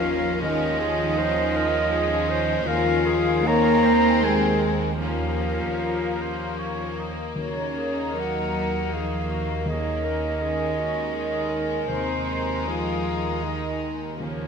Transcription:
Already playing: double bass section D#2, viola section D#3, cello section F3, violin section A#3 C#4, french horn section F4, clarinet A#4, flute F5
0.42 timpani D#3, cello section D#3, viola section F3, violin section G#3, french horn section D#4, clarinet A#4, flute D#5
0.80 clarinet G#4
1.18 clarinet C5
1.56 clarinet A#4
1.92 clarinet G#4
2.30 clarinet C5
2.64 double bass section D#2, timpani D#3, viola section D#3, cello section F3, french horn section F4, clarinet A#4, flute F5
3.06 clarinet G#4
3.45 cello section A#3, violin section C4, french horn section A#4, clarinet C#5, flute A#5
3.85 clarinet C5
4.22 cello section G#3, french horn section G#4, flute G#5
4.99 cello section F3, viola section F3, violin section A#3 C#4, french horn section F4, clarinet A#4, flute F5
5.82 oboe A#4
6.21 oboe C5
6.58 oboe C#5
6.99 oboe D#5
7.36 double bass section D#2, cello section C#3, timpani D#3, viola section D#3, french horn section C#4, violin section D#4, clarinet F#4, flute C#5
7.78 clarinet G#4
8.16 cello section F#3, french horn section F#4, clarinet A#4, flute F#5
8.92 cello section F3, french horn section D#4, clarinet G#4, flute F5
9.31 clarinet F#4
9.66 timpani D#3, cello section D#3, viola section D#3, violin section C#4, french horn section D#4, clarinet G#4, flute D#5
10.05 clarinet A#4
10.42 violin section G#3, clarinet G#4
10.79 clarinet F#4
11.15 clarinet G#4
11.50 clarinet A#4
11.88 double bass section D#2, cello section C3, timpani D#3, french horn section C4, clarinet C5, flute C5
11.92 violin section D#4
12.66 cello section F3, french horn section F4, clarinet G#4, flute F5
13.42 cello section D#3, french horn section D#4, flute D#5
14.20 cello section C#3, timpani D#3, viola section F3, violin section A#3 C#4, french horn section C#4, clarinet A#4, flute C#5

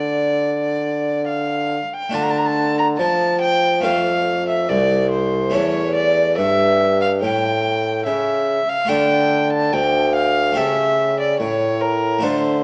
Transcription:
Already playing: bassoon D3, harpsichord D3 A3 D4 F4, violin D5
1.28 violin F5
1.93 violin G5
2.09 harpsichord A3 D4 F4
2.14 bassoon D3, harpsichord D3, violin A5
2.22 violin A#5
2.30 violin A5
2.38 violin A#5
2.46 violin A5
2.79 violin A#5
2.98 bassoon F3, harpsichord F3, violin A5
3.41 violin G5
3.80 bassoon F2, harpsichord A3 C4 F4, violin F5
3.85 harpsichord F2
4.49 violin E5
4.69 bassoon C2, harpsichord C2, violin D5
5.12 violin C5
5.50 harpsichord A3 C#4 A4, violin C#5
5.54 bassoon E2, harpsichord E2
5.95 violin D5
6.38 bassoon G2, harpsichord G2, violin E5
7.02 violin F5
7.22 bassoon A2, harpsichord A2, violin G5
8.06 bassoon C#3, harpsichord C#3, violin E5
8.69 violin F5
8.85 harpsichord A3 F4 A4, violin G5
8.89 bassoon D3, harpsichord D3
9.52 violin A5
9.73 bassoon D2, harpsichord D2, violin G5
10.15 violin F5
10.53 harpsichord A3 G4 A4
10.57 bassoon C#3, harpsichord C#3, violin E5
11.20 violin D5
11.39 bassoon A2, harpsichord A2, violin C#5
11.81 violin A#4
12.19 bassoon D3, harpsichord A3 F4 A4
12.23 harpsichord D3, violin C5

